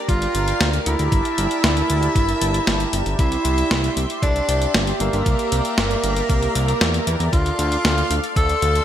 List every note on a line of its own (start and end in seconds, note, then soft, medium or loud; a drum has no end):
0.00 7.29 G4 medium
0.00 3.15 A#4 medium
0.00 3.15 D5 medium
0.00 1.10 A#5 medium
0.09 0.27 G1 medium
0.09 0.76 F4 loud
0.09 0.76 F5 loud
0.09 kick loud
0.09 closed hi-hat medium
0.22 closed hi-hat soft
0.35 0.53 G1 medium
0.35 closed hi-hat medium
0.48 closed hi-hat soft
0.61 0.79 D2 medium
0.61 snare loud
0.61 closed hi-hat medium
0.73 closed hi-hat soft
0.86 0.96 D2 medium
0.86 3.09 E4 loud
0.86 3.09 E5 loud
0.86 closed hi-hat loud
0.99 1.08 D2 medium
0.99 closed hi-hat soft
1.12 1.21 G1 medium
1.12 3.17 A5 medium
1.12 kick loud
1.12 closed hi-hat medium
1.25 closed hi-hat soft
1.38 1.47 G1 medium
1.38 closed hi-hat medium
1.51 closed hi-hat soft
1.64 1.82 D2 loud
1.64 snare loud
1.64 closed hi-hat medium
1.77 closed hi-hat soft
1.90 2.08 D2 medium
1.90 closed hi-hat medium
2.03 closed hi-hat soft
2.15 2.34 G1 medium
2.15 kick loud
2.15 closed hi-hat medium
2.29 closed hi-hat soft
2.42 2.60 G1 loud
2.42 closed hi-hat loud
2.54 closed hi-hat soft
2.67 2.86 G1 medium
2.67 snare loud
2.67 closed hi-hat medium
2.80 closed hi-hat soft
2.93 3.02 G1 loud
2.93 closed hi-hat loud
3.06 3.15 G1 medium
3.06 closed hi-hat soft
3.19 3.37 C2 loud
3.19 4.12 E4 loud
3.19 8.85 D5 medium
3.19 4.12 E5 loud
3.19 7.29 E5 medium
3.19 5.24 C6 medium
3.19 kick loud
3.19 closed hi-hat medium
3.32 closed hi-hat soft
3.45 3.63 C2 loud
3.45 closed hi-hat medium
3.58 closed hi-hat soft
3.71 3.89 C2 loud
3.71 snare loud
3.71 closed hi-hat medium
3.84 closed hi-hat soft
3.97 4.06 C2 medium
3.97 closed hi-hat medium
4.10 closed hi-hat soft
4.22 4.41 C2 medium
4.22 4.90 D4 loud
4.22 4.90 D5 medium
4.22 kick loud
4.22 closed hi-hat medium
4.36 closed hi-hat soft
4.48 4.67 C2 medium
4.48 closed hi-hat loud
4.62 closed hi-hat soft
4.74 4.93 G1 medium
4.74 snare loud
4.74 closed hi-hat medium
4.87 closed hi-hat soft
5.00 5.09 G1 medium
5.00 7.23 A#3 loud
5.00 7.22 A#4 loud
5.00 closed hi-hat loud
5.13 5.22 G1 medium
5.13 closed hi-hat soft
5.26 5.35 C2 medium
5.26 7.31 A#5 medium
5.26 kick loud
5.26 closed hi-hat medium
5.39 closed hi-hat soft
5.52 5.61 C2 medium
5.52 closed hi-hat medium
5.65 closed hi-hat soft
5.78 5.96 G1 loud
5.78 snare loud
5.78 closed hi-hat medium
5.91 closed hi-hat soft
6.03 6.22 G1 medium
6.03 closed hi-hat medium
6.16 closed hi-hat soft
6.29 6.48 C2 medium
6.29 kick loud
6.29 closed hi-hat medium
6.42 closed hi-hat soft
6.55 6.74 C2 medium
6.55 closed hi-hat loud
6.68 closed hi-hat soft
6.81 6.99 E2 medium
6.81 snare loud
6.81 closed hi-hat medium
6.94 closed hi-hat soft
7.07 7.16 E2 loud
7.07 closed hi-hat medium
7.20 7.29 E2 medium
7.20 closed hi-hat soft
7.33 7.51 D2 loud
7.33 8.26 F4 loud
7.33 8.85 A4 medium
7.33 8.85 F5 medium
7.33 8.26 F5 loud
7.33 8.85 C6 medium
7.33 kick loud
7.33 closed hi-hat medium
7.46 closed hi-hat soft
7.59 7.77 D2 loud
7.59 closed hi-hat medium
7.72 closed hi-hat soft
7.85 8.03 D2 loud
7.85 snare loud
7.85 closed hi-hat medium
7.98 closed hi-hat soft
8.10 8.20 D2 medium
8.10 closed hi-hat medium
8.24 closed hi-hat soft
8.36 8.55 D2 medium
8.36 8.85 A4 loud
8.36 8.85 A5 loud
8.36 kick loud
8.36 closed hi-hat medium
8.49 closed hi-hat soft
8.62 8.81 D2 medium
8.62 closed hi-hat medium
8.75 closed hi-hat soft